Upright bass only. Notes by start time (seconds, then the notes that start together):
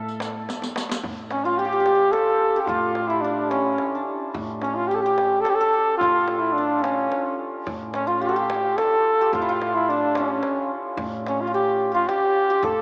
Already playing: A2
1.04 A2
2.69 A2
4.35 A2
6.01 A2
7.67 A2
9.33 A2
10.97 A2
12.62 A2